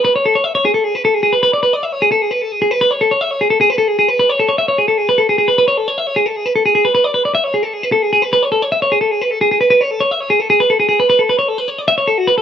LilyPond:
\new Staff \with { instrumentName = "Clean electric guitar" } { \time 7/8 \key a \major \tempo 4 = 152 b'16 cis''16 a'16 cis''16 e''16 cis''16 gis'16 a'16 gis'16 b'16 a'16 gis'16 gis'16 b'16 | b'16 d''16 b'16 d''16 e''16 cis''16 gis'16 a'16 gis'16 b'16 a'16 gis'16 gis'16 b'16 | b'16 cis''16 a'16 cis''16 e''16 cis''16 gis'16 a'16 gis'16 b'16 a'16 gis'16 gis'16 b'16 | b'16 cis''16 a'16 cis''16 e''16 cis''16 gis'16 a'16 gis'16 b'16 a'16 gis'16 gis'16 b'16 |
b'16 cis''16 a'16 cis''16 e''16 cis''16 gis'16 a'16 gis'16 b'16 a'16 gis'16 gis'16 b'16 | b'16 d''16 b'16 d''16 e''16 cis''16 gis'16 a'16 gis'16 b'16 a'16 gis'16 gis'16 b'16 | b'16 cis''16 a'16 cis''16 e''16 cis''16 gis'16 a'16 gis'16 b'16 a'16 gis'16 gis'16 b'16 | b'16 cis''16 a'16 cis''16 e''16 cis''16 gis'16 a'16 gis'16 b'16 a'16 gis'16 gis'16 b'16 |
b'16 a'16 b'16 cis''16 a'16 b'16 cis''16 d''16 e''16 cis''16 a'16 fis'16 b'16 a'16 | }